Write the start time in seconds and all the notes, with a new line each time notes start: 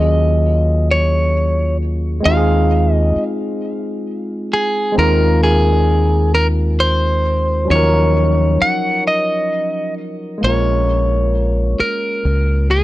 Already playing: D#2 F#3 A#3 C#4 F4 G#4 D#5
0.91 C#5
2.20 G#3 C4
2.25 D#2 D#4 F4 F5
2.30 F#4
2.37 G#4
2.93 D#5
3.16 muted fingered electric bass stroke
4.53 G#4
4.92 G#3 C4
4.97 D#2 D#4 F4 A#4
5.02 A#4
5.43 G#4
6.35 A#4
6.80 C5
7.65 F#3 C#4
7.70 D#2 F3 D#4 C#5
7.75 A#4
8.62 F#5, muted fingered electric bass stroke
9.07 D#5
10.38 G#3 A#3
10.43 A#1 C#4 F4 C#5
10.49 A#4
11.80 A#4, muted fingered electric bass stroke
12.25 C#2
12.71 G#4